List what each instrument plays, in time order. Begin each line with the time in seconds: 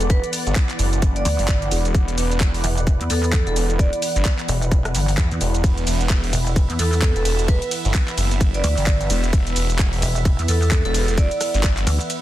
Already playing: detuned saw bass E1, analog synth pad E3 B3 B4 D5, ambient pad F#5
0.00 closed hi-hat, shaker
0.10 vibraphone B4, kick, closed hi-hat, shaker
0.24 closed hi-hat, shaker
0.33 open hi-hat, shaker
0.47 detuned saw bass G1, closed hi-hat, shaker
0.55 kick, clap, closed hi-hat, shaker
0.69 clap, closed hi-hat, shaker
0.79 detuned saw bass F#1, open hi-hat, shaker
0.93 closed hi-hat, shaker
1.02 kick, closed hi-hat, shaker
1.16 vibraphone D5, closed hi-hat, shaker
1.25 wobble bass D2, open hi-hat, shaker
1.39 wobble bass G1, open hi-hat, shaker
1.48 kick, clap, closed hi-hat, shaker
1.62 closed hi-hat, shaker
1.71 detuned saw bass E1, open hi-hat, shaker
1.85 closed hi-hat, shaker
1.95 detuned saw bass E1, kick, closed hi-hat, shaker
2.08 closed hi-hat, shaker
2.18 detuned saw bass E1, open hi-hat, shaker
2.31 closed hi-hat, shaker
2.40 kick, clap, closed hi-hat, shaker
2.54 open hi-hat, shaker
2.64 wobble bass E1, open hi-hat, shaker
2.77 closed hi-hat, shaker
2.87 kick, closed hi-hat, shaker
3.01 wobble bass E2, closed hi-hat, shaker
3.10 wobble bass E2, vibraphone A4, open hi-hat, shaker
3.24 shaker
3.33 kick, clap, closed hi-hat, shaker
3.47 detuned saw bass E1, vibraphone A4, closed hi-hat, shaker
3.56 vibraphone A4, open hi-hat, shaker
3.70 closed hi-hat, shaker
3.79 vibraphone D5, kick, closed hi-hat, shaker
3.93 closed hi-hat, shaker
4.02 open hi-hat, shaker
4.16 detuned saw bass G1, closed hi-hat, shaker
4.25 kick, clap, closed hi-hat, shaker
4.39 clap, closed hi-hat, shaker
4.48 wobble bass E1, open hi-hat, shaker
4.62 closed hi-hat, shaker
4.71 kick, closed hi-hat, shaker
4.85 cross-stick, closed hi-hat, shaker
4.95 wobble bass G1, open hi-hat, shaker
5.08 open hi-hat, shaker
5.17 detuned saw bass E2, kick, clap, shaker
5.31 wobble bass E2, closed hi-hat, shaker
5.41 detuned saw bass E1, open hi-hat, shaker
5.54 closed hi-hat, shaker
5.64 detuned saw bass E1, analog synth pad E5, kick, closed hi-hat, ride, shaker
5.78 closed hi-hat, shaker
5.87 detuned saw bass E1, open hi-hat, ride, shaker
6.01 closed hi-hat, shaker
6.09 kick, clap, closed hi-hat, ride, shaker
6.24 open hi-hat, shaker
6.33 wobble bass E1, open hi-hat, ride, shaker
6.47 closed hi-hat, shaker
6.56 kick, closed hi-hat, ride, shaker
6.70 wobble bass E2, closed hi-hat, shaker
6.79 wobble bass E2, vibraphone A4, open hi-hat, ride, shaker
6.93 shaker
7.02 kick, clap, closed hi-hat, ride, shaker
7.16 detuned saw bass E1, vibraphone A4, closed hi-hat, shaker
7.25 vibraphone A4, open hi-hat, ride, shaker
7.39 closed hi-hat, shaker
7.48 vibraphone B4, kick, closed hi-hat, ride, shaker
7.62 closed hi-hat, shaker
7.71 open hi-hat, ride, shaker
7.85 detuned saw bass G1, closed hi-hat, shaker
7.94 kick, clap, closed hi-hat, ride, shaker
8.08 clap, closed hi-hat, shaker
8.18 detuned saw bass F#1, open hi-hat, ride, shaker
8.31 closed hi-hat, shaker
8.41 kick, closed hi-hat, ride, shaker
8.54 vibraphone D5, closed hi-hat, shaker
8.64 wobble bass D2, open hi-hat, ride, shaker
8.77 wobble bass G1, open hi-hat, shaker
8.86 kick, clap, closed hi-hat, ride, shaker
9.01 closed hi-hat, shaker
9.10 detuned saw bass E1, open hi-hat, ride, shaker
9.24 closed hi-hat, shaker
9.33 detuned saw bass E1, kick, closed hi-hat, ride, shaker
9.47 closed hi-hat, shaker
9.56 detuned saw bass E1, open hi-hat, ride, shaker
9.70 closed hi-hat, shaker
9.79 kick, clap, closed hi-hat, ride, shaker
9.93 open hi-hat, shaker
10.02 wobble bass E1, open hi-hat, ride, shaker
10.16 closed hi-hat, shaker
10.25 kick, closed hi-hat, ride, shaker
10.39 wobble bass E2, closed hi-hat, shaker
10.48 wobble bass E2, vibraphone A4, open hi-hat, ride, shaker
10.62 shaker
10.71 kick, clap, closed hi-hat, ride, shaker
10.85 detuned saw bass E1, vibraphone A4, closed hi-hat, shaker
10.94 vibraphone A4, open hi-hat, ride, shaker
11.08 closed hi-hat, shaker
11.18 vibraphone D5, kick, closed hi-hat, ride, shaker
11.31 closed hi-hat, shaker
11.41 cross-stick, open hi-hat, ride, shaker
11.54 detuned saw bass G1, closed hi-hat, shaker
11.63 detuned saw bass G1, kick, clap, closed hi-hat, ride, shaker
11.77 clap, closed hi-hat, shaker
11.87 wobble bass D2, open hi-hat, ride, shaker
12.01 closed hi-hat, shaker
12.10 closed hi-hat, ride, shaker